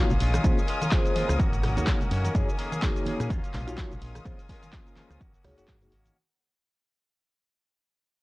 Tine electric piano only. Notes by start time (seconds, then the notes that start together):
0.44 A#3 C#4 F4 G#4 C5
0.92 A#3 C#4 F4 G#4 C5
1.77 A#3 D#4 F#4 G#4 C#5
1.87 F#4
2.35 A#3 D#4 F#4 G#4 C#5
2.82 A#3 D#4 F#4 G#4 C#5
3.67 A#3 D#4 F4 F#4 C#5
3.78 A#3
4.25 A#3 C#4 F4 G#4 C5
4.73 A#3 C#4 F4 G#4 C5
5.44 A#3 D#4 F#4 G#4 C#5
5.58 A#3 D#4 F#4 G#4 C#5
5.82 A#3 D#4 F#4 G#4 C#5